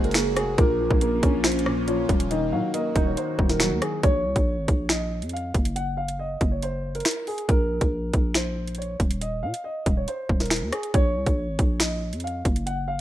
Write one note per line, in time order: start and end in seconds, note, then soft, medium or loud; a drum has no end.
0.00 0.38 F#1 loud
0.00 0.60 G#3 loud
0.00 0.13 A#3 medium
0.00 0.54 A#3 medium
0.00 0.37 C#4 medium
0.00 0.56 F#4 medium
0.00 0.58 F#4 medium
0.00 0.56 G#4 medium
0.04 0.35 A#4 medium
0.04 closed hi-hat soft
0.11 0.58 A#3 medium
0.11 finger snap medium
0.11 snare loud
0.11 closed hi-hat medium
0.19 closed hi-hat medium
0.37 0.57 F1 loud
0.37 0.53 G#4 medium
0.37 cross-stick loud
0.37 closed hi-hat medium
0.58 0.89 A#1 loud
0.58 1.65 A#2 medium
0.58 4.00 A#3 medium
0.58 2.29 C#4 medium
0.58 2.29 F4 medium
0.58 1.40 A#4 loud
0.58 kick loud
0.58 closed hi-hat medium
0.80 1.86 F3 medium
0.91 1.22 A#1 loud
0.91 kick medium
1.01 2.09 A#3 medium
1.01 closed hi-hat medium
1.23 2.06 A#1 loud
1.23 2.31 C#4 medium
1.23 kick loud
1.23 closed hi-hat medium
1.44 1.85 C5 medium
1.44 finger snap loud
1.44 snare loud
1.44 closed hi-hat medium
1.52 closed hi-hat medium
1.59 closed hi-hat medium
1.66 2.31 A#2 medium
1.66 cross-stick medium
1.88 2.31 F3 medium
1.88 2.04 C#5 medium
1.88 closed hi-hat medium
2.09 2.54 D#1 loud
2.09 kick medium
2.09 closed hi-hat medium
2.20 closed hi-hat medium
2.31 3.37 D#3 medium
2.31 4.02 D#3 medium
2.31 4.02 F#4 medium
2.31 2.47 D#5 medium
2.31 closed hi-hat medium
2.52 2.63 A#2 loud
2.52 3.59 F#3 medium
2.52 2.69 F5 medium
2.74 3.82 A#3 medium
2.74 3.04 D#5 medium
2.74 closed hi-hat medium
2.96 3.16 D#1 loud
2.96 4.04 D#4 medium
2.96 kick medium
2.96 closed hi-hat medium
3.06 3.15 C#5 medium
3.17 3.48 C5 medium
3.17 closed hi-hat medium
3.39 3.73 D#1 loud
3.39 4.03 D#3 medium
3.39 kick medium
3.49 3.80 A#4 medium
3.49 snare medium
3.49 closed hi-hat medium
3.60 4.03 F#3 medium
3.60 finger snap medium
3.60 snare loud
3.71 3.81 D#2 medium
3.82 3.98 G#4 medium
3.82 cross-stick medium
3.82 closed hi-hat medium
4.03 4.26 A#1 loud
4.03 4.86 C#5 loud
4.03 kick loud
4.03 closed hi-hat medium
4.25 4.35 C2 medium
4.36 4.59 A#1 loud
4.36 kick medium
4.36 closed hi-hat medium
4.57 4.68 G#1 medium
4.68 5.24 A#1 loud
4.68 kick medium
4.68 closed hi-hat medium
4.89 5.31 D#5 medium
4.89 finger snap medium
4.89 snare loud
4.89 closed hi-hat medium
5.22 5.53 F2 loud
5.22 closed hi-hat medium
5.29 5.50 F5 medium
5.29 closed hi-hat medium
5.37 closed hi-hat medium
5.54 6.37 F#1 loud
5.54 kick medium
5.54 closed hi-hat medium
5.65 closed hi-hat medium
5.76 5.92 F#5 medium
5.76 closed hi-hat medium
5.97 6.14 F5 medium
6.08 closed hi-hat medium
6.19 6.50 D#5 medium
6.41 7.03 F#1 loud
6.41 kick medium
6.41 closed hi-hat medium
6.52 6.60 C#5 medium
6.62 6.93 C5 medium
6.62 closed hi-hat medium
6.95 7.25 A#4 medium
6.95 closed hi-hat soft
7.00 closed hi-hat medium
7.05 finger snap medium
7.05 snare loud
7.05 closed hi-hat medium
7.11 closed hi-hat medium
7.27 7.44 G#4 medium
7.27 open hi-hat medium
7.38 closed hi-hat medium
7.48 7.80 A#1 loud
7.48 8.31 A#4 loud
7.48 kick loud
7.48 closed hi-hat medium
7.81 8.12 A#1 loud
7.81 kick medium
7.81 closed hi-hat medium
8.13 8.96 A#1 loud
8.13 kick loud
8.13 closed hi-hat medium
8.34 8.76 C5 medium
8.34 finger snap medium
8.34 snare loud
8.34 closed hi-hat medium
8.68 closed hi-hat medium
8.75 8.95 C#5 medium
8.75 closed hi-hat medium
8.82 closed hi-hat medium
9.00 9.44 D#1 loud
9.00 kick medium
9.00 closed hi-hat medium
9.11 closed hi-hat medium
9.21 9.38 D#5 medium
9.21 closed hi-hat medium
9.43 9.53 A#2 loud
9.43 9.59 F5 medium
9.54 closed hi-hat medium
9.64 9.95 D#5 medium
9.86 10.07 D#1 loud
9.86 kick loud
9.86 closed hi-hat medium
9.97 10.05 C#5 medium
10.08 10.38 C5 medium
10.08 closed hi-hat medium
10.29 10.63 D#1 loud
10.29 kick medium
10.40 10.71 A#4 medium
10.40 snare medium
10.40 closed hi-hat soft
10.46 closed hi-hat medium
10.50 finger snap medium
10.50 snare loud
10.50 closed hi-hat medium
10.56 closed hi-hat medium
10.62 10.72 D#2 loud
10.73 10.89 G#4 medium
10.73 cross-stick medium
10.73 closed hi-hat medium
10.83 closed hi-hat medium
10.94 11.17 A#1 loud
10.94 11.77 C#5 loud
10.94 kick loud
10.94 closed hi-hat medium
11.16 11.26 C2 loud
11.26 11.50 A#1 loud
11.26 kick medium
11.26 closed hi-hat medium
11.48 11.58 G#1 medium
11.59 12.14 A#1 loud
11.59 kick loud
11.59 closed hi-hat medium
11.80 12.21 D#5 medium
11.80 finger snap medium
11.80 snare loud
11.80 closed hi-hat medium
12.13 12.44 F2 loud
12.13 closed hi-hat medium
12.20 12.40 F5 medium
12.20 closed hi-hat medium
12.27 closed hi-hat medium
12.45 13.01 F#1 loud
12.45 kick medium
12.45 closed hi-hat medium
12.56 closed hi-hat medium
12.66 12.83 F#5 medium
12.66 closed hi-hat medium
12.88 13.01 F5 medium